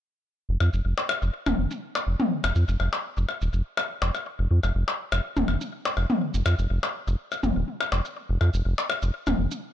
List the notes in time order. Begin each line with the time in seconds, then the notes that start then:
0.49 F1
0.60 F2, percussion blips
0.73 F1, shaker
0.85 F1
0.98 percussion blips
1.09 percussion blips
1.22 F1, shaker
1.46 D#1, mid tom, percussion blips, shaker
1.58 F1
1.71 shaker
1.95 percussion blips
2.07 F1
2.20 mid tom
2.44 F1, percussion blips, shaker
2.55 F2, shaker
2.68 F1, shaker
2.80 F1, percussion blips
2.93 percussion blips
3.17 F1, shaker
3.29 percussion blips
3.41 D#1, shaker
3.53 F1, shaker
3.77 percussion blips
4.02 F1, percussion blips
4.15 percussion blips, shaker
4.39 F1
4.51 F2
4.63 F1, percussion blips, shaker
4.75 F1
4.88 percussion blips
5.12 F1, percussion blips, shaker
5.37 D#1, mid tom, shaker
5.48 F1, percussion blips
5.61 shaker
5.85 percussion blips
5.97 F1, percussion blips
6.10 mid tom
6.34 F1, shaker
6.46 F2, percussion blips, shaker
6.59 F1, shaker
6.70 F1
6.83 percussion blips
7.07 F1, shaker
7.32 percussion blips, shaker
7.43 F1, mid tom, shaker
7.56 D#1
7.81 percussion blips
7.92 F1, percussion blips
8.05 shaker
8.29 F1
8.41 F2, percussion blips
8.54 F1, shaker
8.65 F1
8.78 percussion blips
8.90 percussion blips
9.02 F1, shaker
9.27 D#1, mid tom, percussion blips, shaker
9.38 F1
9.51 shaker